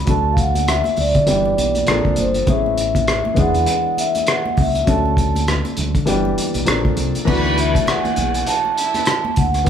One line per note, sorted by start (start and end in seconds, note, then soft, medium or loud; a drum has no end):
0.00 0.12 B5 medium
0.05 0.81 D2 medium
0.05 1.24 F#3 medium
0.05 1.24 A3 soft
0.05 1.25 D4 medium
0.05 kick loud
0.05 closed hi-hat medium
0.05 muted conga soft
0.05 low conga medium
0.09 1.26 A4 medium
0.09 0.33 A5 loud
0.33 0.38 F5 medium
0.37 0.69 F#5 medium
0.37 kick medium
0.37 closed hi-hat medium
0.55 closed hi-hat medium
0.55 high conga medium
0.67 0.99 E5 medium
0.67 cross-stick loud
0.67 closed hi-hat medium
0.67 muted conga soft
0.84 closed hi-hat soft
0.84 muted conga soft
0.84 high conga medium
0.97 1.12 D2 medium
0.97 2.22 D5 medium
0.97 open hi-hat soft
0.97 low conga medium
1.15 1.30 D3 medium
1.15 kick medium
1.15 closed hi-hat soft
1.26 1.53 G1 medium
1.26 1.87 E3 medium
1.26 1.87 G3 soft
1.26 1.88 B3 medium
1.26 1.88 D4 soft
1.26 1.88 G4 medium
1.26 closed hi-hat medium
1.26 muted conga soft
1.45 muted conga soft
1.58 1.83 B1 medium
1.58 closed hi-hat medium
1.58 high conga soft
1.75 closed hi-hat soft
1.75 high conga medium
1.87 2.03 A#1 medium
1.87 2.47 F3 medium
1.87 2.48 A#3 medium
1.87 2.48 C4 medium
1.87 2.48 D4 medium
1.87 2.48 A4 medium
1.87 cross-stick loud
1.87 closed hi-hat medium
1.87 muted conga soft
2.05 2.15 C2 medium
2.05 kick medium
2.05 high conga medium
2.16 2.43 G1 medium
2.16 2.46 C5 medium
2.16 closed hi-hat medium
2.16 high conga medium
2.16 low conga medium
2.34 closed hi-hat soft
2.47 3.21 A1 medium
2.47 3.33 E3 medium
2.47 3.38 A3 medium
2.47 3.35 B3 soft
2.47 3.38 C#4 medium
2.47 3.37 G#4 medium
2.47 3.34 E5 medium
2.47 kick loud
2.47 closed hi-hat medium
2.47 low conga medium
2.66 muted conga soft
2.78 closed hi-hat medium
2.95 kick medium
2.95 closed hi-hat medium
2.95 high conga medium
3.08 cross-stick loud
3.08 closed hi-hat medium
3.25 muted conga soft
3.25 high conga medium
3.34 3.52 E1 medium
3.34 4.83 E3 medium
3.34 4.83 G#3 medium
3.34 4.84 B3 soft
3.34 4.84 D4 medium
3.34 kick medium
3.34 closed hi-hat medium
3.34 low conga medium
3.39 4.85 G#4 medium
3.39 4.00 F#5 medium
3.54 3.65 E2 medium
3.54 closed hi-hat soft
3.66 closed hi-hat medium
3.66 muted conga soft
3.97 4.29 E5 medium
3.97 closed hi-hat medium
3.97 high conga soft
4.15 closed hi-hat soft
4.15 high conga medium
4.27 4.59 F#5 medium
4.27 cross-stick loud
4.27 closed hi-hat medium
4.46 muted conga soft
4.46 high conga medium
4.57 4.82 C#2 medium
4.57 4.90 E5 medium
4.57 kick medium
4.57 open hi-hat soft
4.57 high conga medium
4.57 low conga medium
4.75 closed hi-hat soft
4.84 5.61 D2 medium
4.84 6.03 F#3 medium
4.84 6.04 A3 soft
4.84 6.04 C#4 medium
4.84 6.05 D4 soft
4.84 kick loud
4.84 closed hi-hat medium
4.88 6.06 A4 medium
4.88 5.44 A5 medium
4.88 low conga medium
5.06 muted conga soft
5.17 kick medium
5.17 closed hi-hat medium
5.35 closed hi-hat medium
5.35 high conga medium
5.48 cross-stick medium
5.48 closed hi-hat medium
5.48 muted conga soft
5.65 closed hi-hat soft
5.65 muted conga soft
5.65 high conga medium
5.77 5.92 D2 medium
5.77 closed hi-hat medium
5.77 low conga medium
5.95 6.05 D3 medium
5.95 kick medium
5.95 closed hi-hat soft
6.06 6.33 G1 medium
6.06 6.66 E3 medium
6.06 6.67 G3 medium
6.06 6.67 B3 medium
6.06 6.66 D4 medium
6.06 6.68 G4 medium
6.06 closed hi-hat medium
6.25 muted conga soft
6.38 muted fingered electric bass stroke soft
6.38 closed hi-hat medium
6.38 high conga soft
6.54 6.65 B1 medium
6.54 closed hi-hat soft
6.54 high conga medium
6.65 6.93 A#1 medium
6.65 7.26 F3 medium
6.65 7.26 A#3 medium
6.65 7.27 C4 medium
6.65 7.27 D4 medium
6.65 7.28 A4 medium
6.65 cross-stick loud
6.65 closed hi-hat medium
6.65 muted conga soft
6.85 kick medium
6.85 muted conga soft
6.85 high conga medium
6.97 7.12 C2 medium
6.97 closed hi-hat medium
6.97 high conga medium
6.97 low conga medium
7.15 closed hi-hat soft
7.25 7.78 D2 medium
7.25 9.62 E3 medium
7.25 9.62 A3 medium
7.25 9.63 B3 medium
7.25 9.64 D4 medium
7.25 7.71 B4 loud
7.25 7.71 B5 loud
7.25 kick loud
7.25 crash medium
7.25 muted conga soft
7.25 low conga medium
7.29 9.64 F#4 medium
7.46 muted conga soft
7.58 7.89 E5 medium
7.58 closed hi-hat medium
7.74 7.84 A4 medium
7.74 7.84 A5 medium
7.74 kick medium
7.74 closed hi-hat medium
7.74 high conga medium
7.86 8.43 G#4 medium
7.86 8.50 F#5 medium
7.86 8.43 G#5 medium
7.86 cross-stick loud
7.86 closed hi-hat medium
7.86 muted conga soft
8.05 closed hi-hat soft
8.05 muted conga soft
8.05 high conga medium
8.16 8.43 B1 medium
8.16 closed hi-hat medium
8.16 low conga medium
8.34 closed hi-hat soft
8.46 8.70 F#4 medium
8.46 8.70 F#5 medium
8.46 9.40 A5 loud
8.46 closed hi-hat medium
8.65 muted conga soft
8.75 9.33 E4 loud
8.75 9.32 E5 loud
8.75 closed hi-hat medium
8.94 cross-stick soft
8.94 closed hi-hat soft
8.94 high conga medium
9.06 cross-stick loud
9.06 closed hi-hat medium
9.06 muted conga soft
9.25 high conga medium
9.36 9.63 D2 medium
9.36 9.70 F#5 medium
9.36 kick medium
9.36 closed hi-hat medium
9.36 high conga medium
9.54 cross-stick soft
9.54 closed hi-hat soft
9.64 9.70 E3 medium
9.64 9.70 A3 medium
9.64 closed hi-hat medium